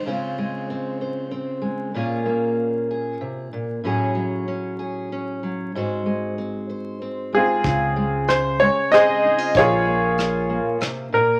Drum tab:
HH |------|------|------|------|
SD |------|------|------|------|
BD |------|------|------|------|

HH |x-x-x-|x-x-x-|
SD |--r-r-|--r-r-|
BD |o-----|o-----|